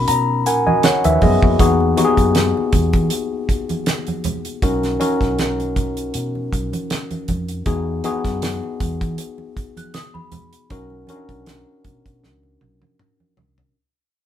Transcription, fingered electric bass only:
0.09 B2
0.47 A#2
1.05 D#2
1.22 F#2
1.43 F2
1.60 E2
2.18 F#2
2.73 E2
2.94 E3
4.63 B1
5.21 B1
6.15 B2
6.53 B1
7.29 F2
7.66 E2
8.25 F#2
8.81 E2
9.01 E3
10.71 B1
11.29 B1
11.85 B2
12.06 B2
12.24 C#2
12.62 B1
13.38 C2

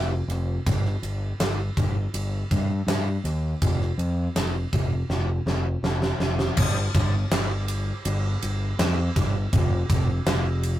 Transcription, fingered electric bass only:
Already playing: F1
0.28 F1
0.66 G1
1.02 G1
1.40 G1
1.77 G1
2.14 G1
2.51 G2
2.87 G2
3.24 D#2
3.62 F1
3.98 F2
4.35 F1
4.73 F1
5.09 F1
5.46 F1
5.83 F1
6.19 F1
6.58 G1
6.95 G1
7.31 G1
8.05 G1
8.43 G1
8.79 F2
9.16 G1
9.53 F1
9.90 F1
10.26 F1

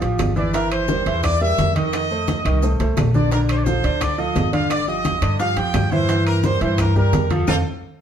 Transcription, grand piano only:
0.01 F3 F4 G4
0.36 E3 E4 E5
0.54 E3 E4 E5
0.88 G3 G4 A#4
1.06 E3 E4 E5
1.41 G3 G4 A#4
1.76 D#3 D#4 D#5
2.11 A3 A4 C5
2.46 D#3 D#4 D#5
2.63 A3 A4 C5
2.80 A3 A4 C5
3.15 D3 D4 D5
3.32 D3 D4 D5
3.67 F3 F4 A4
3.84 D3 D4 D5
4.18 F3 F4 A4
4.53 D3 D4 D5
4.88 F3 F4 G4
5.22 D3 D4 D5
5.40 F3 F4 G4
5.57 F3 F4 G4
5.92 E3 E4 E5
6.09 E3 E4 E5
6.44 G3 G4 A#4
6.61 E3 E4 E5
6.96 G3 G4 A#4
7.31 F3 F4 F5
7.48 C4 F4 A4

